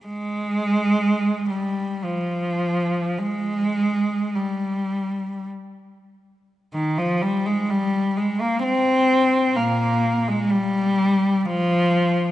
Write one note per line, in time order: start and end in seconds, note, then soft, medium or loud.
0.06 1.47 G#3 medium
1.51 2.05 G3 medium
2.04 3.19 F3 medium
3.19 4.35 G#3 medium
4.35 5.48 G3 medium
6.74 6.97 D#3 medium
6.98 7.22 F3 medium
7.22 7.46 G3 medium
7.46 7.70 G#3 medium
7.70 8.17 G3 medium
8.17 8.41 G#3 medium
8.41 8.63 A#3 medium
8.64 9.55 C4 medium
9.56 10.24 A#2 medium
9.56 10.28 A#3 medium
10.28 10.52 G#3 medium
10.51 11.46 G3 medium
11.46 12.32 F3 medium